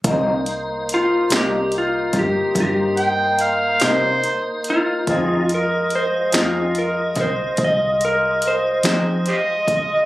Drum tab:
HH |xxxxxxxxxxxx|xxxxxxxxxxxx|
SD |---o-oo--o--|---o-o---o--|
BD |o----oo-----|o----oo----o|